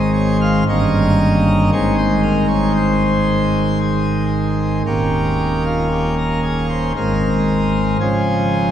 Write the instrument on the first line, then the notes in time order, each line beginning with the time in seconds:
pipe organ
Already playing: G#1 G#2 D#3 G#3 C4 D#5
0.13 C#5
0.41 F5
0.69 G1 G2 D#3 A#3 C#4 D#5
1.72 G#1 G#2 D#3 G#3 C4 C#5
1.98 C5
2.23 A#4
2.48 C#5
2.76 C5
3.80 G#4
4.86 D#1 D#2 D#3 A#3 C#4 G4
5.66 F4
5.92 G4
6.18 A#4
6.44 G#4
6.70 C5
6.96 G#1 G#2 D#3 G#3 C4 A#4
8.00 C#3 F3 G#3 C4 G#4